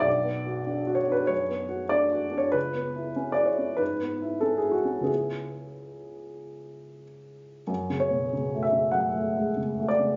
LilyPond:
<<
  \new Staff \with { instrumentName = "Upright piano" } { \time 4/4 \key fis \minor \tempo 4 = 95 d''4. cis''16 b'16 cis''4 d''8. cis''16 | b'4~ b'16 d''16 cis''8 b'4 a'16 gis'16 fis'8 | gis'2. r4 | r8 cis''4 e''8 fis''4. d''8 | }
  \new Staff \with { instrumentName = "Upright piano" } { \time 4/4 \key fis \minor \tuplet 3/2 { <b,, d'>8 b8 fis'8 d'8 fis'8 d'8 fis,8 b8 fis'8 d'8 fis'8 d'8 } | \tuplet 3/2 { cis,8 b8 e'8 cis'8 e'8 cis'8 gis,8 b8 e'8 cis'8 e'8 cis'8 } | <cis, b cis' e'>1 | \tuplet 3/2 { fis,8 cis8 b,8 cis8 a8 cis8 fis,8 a8 gis8 cis8 a8 cis8 } | }
>>